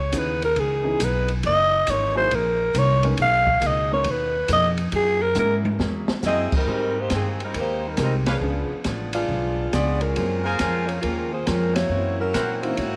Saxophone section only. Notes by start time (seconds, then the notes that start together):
6.26 C4 E4 G#4 D#5
6.56 G3 C4 D#4 A#4
6.99 A#3 D#4 G4 C5
7.14 D#3 A#3 C4 G#4
7.44 G3 C4 D#4 A#4
7.60 A#3 D#4 G4 C5
7.87 G3 C4 D#4 A#4
8.03 G3 C4 D#4 A#4
8.31 F3 B3 D4 G#4
9.15 G#3 B3 D4 F4
9.73 B3 F4 G#4 D5
10.02 G#3 C#4 F4 A#4
10.45 A#3 F4 G#4 C5
10.59 G#3 C#4 F4 A#4
10.87 F3 A#3 C#4 G#4
11.02 G#3 C#4 F4 A#4
11.33 A#3 F4 G#4 C5
11.47 G#3 C#4 F4 A#4
11.75 A#3 E4 F#4 C#5
12.20 F#3 C#4 E4 A#4
12.61 A#3 E4 F#4 C5
12.76 A#3 E4 F#4 C#5